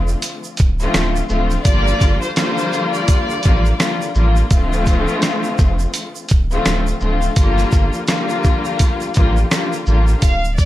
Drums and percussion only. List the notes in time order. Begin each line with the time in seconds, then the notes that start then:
0.08 shaker
0.22 closed hi-hat, shaker
0.44 shaker
0.57 kick, closed hi-hat, shaker
0.80 shaker
0.94 cross-stick, snare, closed hi-hat, shaker
1.16 shaker
1.29 shaker
1.51 shaker
1.65 kick, closed hi-hat, shaker
1.87 shaker
2.01 kick, closed hi-hat, shaker
2.22 shaker
2.36 cross-stick, snare, closed hi-hat, shaker
2.58 shaker
2.73 shaker
2.94 shaker
3.08 kick, closed hi-hat, shaker
3.30 shaker
3.43 kick, closed hi-hat, shaker
3.66 shaker
3.80 cross-stick, snare, closed hi-hat, shaker
4.02 shaker
4.15 shaker
4.36 shaker
4.51 kick, closed hi-hat, shaker
4.73 shaker
4.86 kick, closed hi-hat, shaker
5.08 shaker
5.22 cross-stick, snare, closed hi-hat, shaker
5.44 shaker
5.58 kick, shaker
5.79 shaker
5.94 closed hi-hat, shaker
6.15 shaker
6.29 kick, closed hi-hat, shaker
6.51 shaker
6.66 cross-stick, snare, closed hi-hat, shaker
6.87 shaker
7.00 shaker
7.22 shaker
7.36 kick, closed hi-hat, shaker
7.58 snare, shaker
7.72 kick, shaker
7.93 shaker
8.08 cross-stick, snare, closed hi-hat, shaker
8.29 shaker
8.44 kick, shaker
8.65 shaker
8.79 kick, closed hi-hat, shaker
9.01 shaker
9.14 kick, closed hi-hat, shaker
9.37 shaker
9.51 cross-stick, snare, closed hi-hat, shaker
9.73 shaker
9.86 shaker
10.08 shaker
10.22 kick, closed hi-hat, shaker
10.44 shaker
10.58 kick, closed hi-hat, shaker